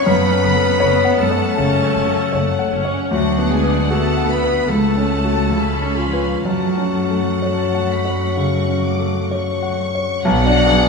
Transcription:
0.06 double bass section F#1, grand piano F#2, viola section A3, cello section B3, clarinet B4, violin section F#5 B5
0.31 grand piano C#4
0.44 double bass section F#1, viola section B3, violin section F#5
0.56 grand piano A4
0.80 double bass section F#1, grand piano C#5, violin section F#5
1.05 grand piano F#5
1.19 double bass section F#1, cello section A3, clarinet A4, violin section F#5 A5
1.31 grand piano C#5
1.58 double bass section F#1, grand piano C#3, viola section C#4, violin section F#5
1.82 grand piano C#4
1.97 double bass section F#1, violin section F#5
2.07 grand piano A4
2.33 double bass section F#1, viola section A3, grand piano C#5, violin section F#5
2.59 grand piano F#5
2.72 double bass section F#1, viola section C#4, violin section F#5
2.85 grand piano C#5
3.11 grand piano D2, double bass section D2, cello section F#3, viola section D4, clarinet F#4, violin section F#5
3.38 grand piano B3
3.51 cello section G#3, clarinet G#4, violin section G#5
3.63 grand piano B4
3.89 cello section A3, viola section B3, grand piano F#4, clarinet A4, violin section A5
4.17 grand piano F#5
4.29 cello section B3, clarinet B4, violin section B5
4.44 grand piano B4
4.68 grand piano C#2, double bass section C#2, cello section A3, viola section A3, clarinet A4, violin section F#5 A5
4.97 grand piano C#4
5.25 grand piano F#4 A4
5.50 grand piano C#2, viola section C#4, violin section B5
5.82 grand piano C#4
5.96 cello section F3, clarinet F4, violin section F5
6.13 grand piano F4 B4
6.44 double bass section F#2, grand piano F#2, cello section F#3, viola section A3, clarinet F#4, violin section F#5 A5
6.78 grand piano C#4
7.11 grand piano A4
7.42 grand piano C#5, violin section A5
7.74 grand piano F#5
7.89 violin section B5
8.05 grand piano C#5
8.36 grand piano C#3, violin section C#6
8.68 grand piano C#4
8.84 violin section D6
8.99 grand piano A4
9.30 grand piano C#5, violin section C#6
9.63 grand piano F#5
9.95 grand piano C#5
10.24 grand piano B1, double bass section B1, cello section F#3, violin section B3 D5 F#5
10.46 grand piano D4, violin section D4
10.66 grand piano B3, violin section G#4

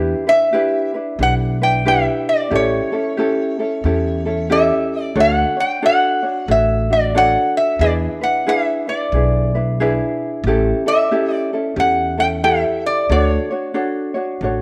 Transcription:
Already playing: upright bass E2, ukulele D4 E4 G4 B4
0.27 ukulele D4 E4 B4, resonator guitar played with a steel bar E5
0.53 ukulele D4 E4 G4 B4
0.94 ukulele D4 E4 B4
1.19 upright bass B1, ukulele D4 E4 G4 B4, resonator guitar played with a steel bar F#5
1.62 ukulele D4 E4 B4, resonator guitar played with a steel bar G5
1.85 ukulele D4 E4 G4 B4, resonator guitar played with a steel bar E5
2.29 resonator guitar played with a steel bar D5
2.50 upright bass A1, ukulele C#4 E4 G4 A4
2.56 resonator guitar played with a steel bar C#5
2.92 ukulele C#4 E4 A4
3.17 ukulele C#4 E4 G4 A4
3.59 ukulele C#4 E4 A4
3.84 upright bass E2, ukulele C#4 E4 G4 A4
4.25 ukulele C#4 E4 A4
4.50 ukulele C#4 E4 G4 A4, resonator guitar played with a steel bar E5
5.03 resonator guitar played with a steel bar D5
5.15 upright bass D2, ukulele D4 F#4 A4 C#5
5.20 resonator guitar played with a steel bar F#5
5.56 ukulele D4 C#5, resonator guitar played with a steel bar G5
5.82 ukulele D4 F#4 A4 C#5, resonator guitar played with a steel bar F#5
6.23 ukulele D4 F#4 C#5
6.48 upright bass A1, ukulele D4 F#4 A4 C#5, resonator guitar played with a steel bar E5
6.90 ukulele D4 F#4, resonator guitar played with a steel bar D5
7.15 ukulele D4 F#4 A4 C#5, resonator guitar played with a steel bar F#5
7.57 resonator guitar played with a steel bar E5
7.79 upright bass E2, ukulele D4 E4 G#4 B4, resonator guitar played with a steel bar D5
8.21 ukulele D4 E4 B4, resonator guitar played with a steel bar F#5
8.46 ukulele D4 E4 G#4 B4, resonator guitar played with a steel bar E5
8.88 ukulele D4 E4 B4, resonator guitar played with a steel bar D5
9.12 upright bass B1, ukulele D4 E4 G#4 B4
9.55 ukulele D4 E4 B4
9.80 ukulele D4 E4 G#4 B4
10.44 upright bass A1, ukulele C#4 G4
10.48 ukulele E4 A4
10.86 ukulele C#4 E4 A4, resonator guitar played with a steel bar E5
11.11 ukulele C#4 E4 G4 A4
11.34 resonator guitar played with a steel bar D5
11.53 ukulele C#4 E4 A4
11.76 upright bass E2, ukulele C#4 E4 G4 A4, resonator guitar played with a steel bar F#5
12.17 ukulele C#4 E4 A4, resonator guitar played with a steel bar G5
12.43 ukulele E4 G4 A4, resonator guitar played with a steel bar E5
12.86 resonator guitar played with a steel bar D5
13.10 upright bass D2, ukulele D4 F#4 A4 C#5, resonator guitar played with a steel bar D5
13.23 resonator guitar played with a steel bar C#5
13.51 ukulele D4 F#4 C#5
13.74 ukulele D4 F#4 A4 C#5
14.14 ukulele D4 F#4 C#5
14.41 upright bass A1, ukulele D4 F#4 A4 C#5

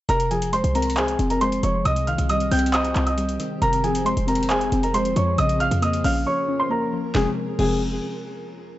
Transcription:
0.09 808-style bass F1, synth pluck C3, ambient pad F3 C4 G#4, grand piano A#4 A#5, closed hi-hat
0.20 closed hi-hat
0.31 synth pluck F3, grand piano G#4 G#5, closed hi-hat
0.42 closed hi-hat
0.53 synth pluck G#3, grand piano C5 C6, closed hi-hat
0.64 808-style bass C2, closed hi-hat
0.75 synth pluck C4, grand piano A#4 A#5, closed hi-hat
0.82 closed hi-hat
0.90 closed hi-hat
0.97 grand piano G#4 G#5, synth pluck C5, clap, closed hi-hat
1.08 closed hi-hat
1.19 808-style bass F1, synth pluck C4, closed hi-hat
1.30 grand piano A#4 A#5, closed hi-hat
1.41 synth pluck G#3, grand piano C5 C6, closed hi-hat
1.52 closed hi-hat
1.63 808-style bass F1, synth pluck F3, grand piano C#5 C#6, closed hi-hat
1.85 808-style bass C2, synth pluck C3, ambient pad D#3 C4 G4, grand piano D#5 D#6, closed hi-hat
1.96 closed hi-hat
2.07 synth pluck D#3, grand piano F5 F6, closed hi-hat
2.18 808-style bass C2, closed hi-hat
2.29 synth pluck G3, grand piano D#5 D#6, closed hi-hat
2.40 closed hi-hat
2.51 808-style bass C2, synth pluck C4, grand piano G5 G6, closed hi-hat, open hi-hat
2.59 closed hi-hat
2.66 closed hi-hat
2.73 synth pluck C5, grand piano D#5 D#6, clap, closed hi-hat
2.85 closed hi-hat
2.96 808-style bass C2, synth pluck C4, clap, closed hi-hat
3.07 grand piano D#5 D#6, closed hi-hat
3.18 synth pluck G3, closed hi-hat
3.29 closed hi-hat
3.40 synth pluck D#3, closed hi-hat
3.62 808-style bass F1, synth pluck C3, ambient pad F3 G#4, grand piano A#4 A#5, closed hi-hat
3.73 closed hi-hat
3.84 synth pluck F3, grand piano G#4 G#5, closed hi-hat
3.95 closed hi-hat
4.05 synth pluck G#3, grand piano C5 C6, closed hi-hat
4.17 808-style bass F1, closed hi-hat
4.27 synth pluck C4, grand piano A#4 A#5, closed hi-hat
4.35 closed hi-hat
4.43 closed hi-hat
4.50 grand piano G#4 G#5, synth pluck C5, clap, closed hi-hat
4.61 closed hi-hat
4.72 808-style bass F1, synth pluck C4, closed hi-hat
4.83 grand piano A#4 A#5, closed hi-hat
4.94 synth pluck G#3, grand piano C5 C6, closed hi-hat
5.05 closed hi-hat
5.16 808-style bass F2, synth pluck F3, grand piano C#5 C#6, closed hi-hat
5.38 808-style bass A#1, synth pluck C#3, ambient pad C#4 A#4, grand piano D#5 D#6, closed hi-hat
5.49 closed hi-hat
5.60 synth pluck F3, grand piano F5 F6, closed hi-hat
5.71 808-style bass F2, closed hi-hat
5.82 synth pluck A#3, grand piano D#5 D#6, closed hi-hat
5.93 closed hi-hat
6.04 808-style bass A#1, synth pluck C#4, grand piano F5 F6, open hi-hat
6.26 synth pluck C#5, grand piano C#5 C#6
6.48 synth pluck C#4
6.60 grand piano C5 C6
6.69 synth pluck A#3, grand piano A#4 A#5
6.93 synth pluck F3
7.15 808-style bass F1, synth pluck C3 F3 G#3 C4, grand piano G#4, snare
7.59 808-style bass F1, synth pluck C3 F3 G#3 C4, grand piano G#4, crash

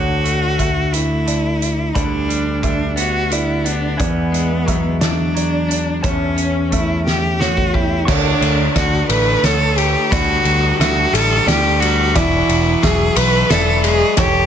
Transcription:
Already playing: picked electric bass D2, clean electric guitar D3, pedal steel guitar D4 A4 F#5 C#6, cello F#4, felt piano C#5
0.24 clean electric guitar A3, closed hi-hat
0.58 clean electric guitar D3, felt piano E5, kick, closed hi-hat
0.93 cello E4, closed hi-hat
1.26 clean electric guitar D3, felt piano D5, closed hi-hat
1.62 closed hi-hat
1.95 picked electric bass D2, clean electric guitar D3, pedal steel guitar G3 B5, cello D4, felt piano D5, kick, closed hi-hat
2.29 clean electric guitar G3, closed hi-hat
2.63 clean electric guitar D3, cello D4, felt piano E5, kick, closed hi-hat
2.96 clean electric guitar B3, cello F#4, closed hi-hat
3.31 clean electric guitar D3, cello E4, felt piano D5, closed hi-hat
3.64 clean electric guitar B3, cello D4, closed hi-hat
3.97 clean electric guitar E2, picked electric bass E2, cello B3, pedal steel guitar E4 F#5 G#5, felt piano D5, kick, closed hi-hat
4.32 clean electric guitar G#3, closed hi-hat
4.66 clean electric guitar F#3, felt piano E5, kick, closed hi-hat
5.01 clean electric guitar D4, cello D4, snare, closed hi-hat
5.35 clean electric guitar F#3, felt piano D5, closed hi-hat
5.69 clean electric guitar D4, closed hi-hat
6.02 clean electric guitar E2, picked electric bass E2, cello C#4, pedal steel guitar C#5 E5 A5, felt piano C#5, kick, closed hi-hat
6.37 clean electric guitar C#4, closed hi-hat
6.71 clean electric guitar A3, felt piano E5, kick, closed hi-hat
6.75 cello E4
7.07 cello G4, snare
7.39 clean electric guitar A3, cello F#4, felt piano C#5, snare
7.57 kick
7.74 cello E4, clean electric guitar G4, kick
8.05 picked electric bass D2, clean electric guitar D3, pedal steel guitar D4 A4 F#5 C#6, cello D4, felt piano C#5, kick, snare, crash
8.41 picked electric bass D2, ride
8.76 picked electric bass D2, clean electric guitar D3, cello F#4, felt piano D5, kick, snare, ride
9.09 picked electric bass A1, clean electric guitar A3, cello B4, ride
9.43 picked electric bass D2, cello A4, felt piano C#5, snare, ride
9.78 clean electric guitar A3, cello G4, ride
10.10 picked electric bass D2, clean electric guitar D3, pedal steel guitar G3 B5, cello F#4, felt piano D5, kick, snare, ride
10.45 picked electric bass D2, ride
10.79 picked electric bass D2, clean electric guitar D3, cello F#4, felt piano E5, snare, ride
11.13 picked electric bass A1, clean electric guitar G3, cello A4, ride
11.46 picked electric bass D2, cello G4, felt piano D5, snare, ride
11.80 clean electric guitar G3, cello F#4, ride
12.15 picked electric bass E1, clean electric guitar E2, cello E4, pedal steel guitar F#4 E5 G#5 D6, felt piano D5, kick, snare, ride
12.49 picked electric bass E1, ride
12.82 picked electric bass E1, clean electric guitar F#3, cello G#4, felt piano E5, kick, snare, ride
13.16 picked electric bass B1, cello B4, ride
13.50 picked electric bass E1, clean electric guitar E4, cello A4, felt piano D5, snare, ride
13.84 clean electric guitar G#3, cello G#4, ride
14.17 picked electric bass E1, clean electric guitar E3, cello G4, pedal steel guitar A4 A5 C#6, felt piano C#5, kick, snare, ride

